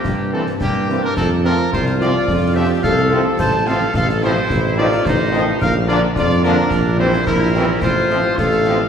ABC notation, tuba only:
X:1
M:2/4
L:1/8
Q:1/4=108
K:F
V:1 name="Tuba" clef=bass
G,,2 G,,2 | F,,2 C,,2 | F,,2 C,,2 | A,,,2 A,,,2 |
A,,,2 A,,,2 | B,,,2 F,,2 | B,,,2 B,,,2 | A,,,2 A,,,2 |]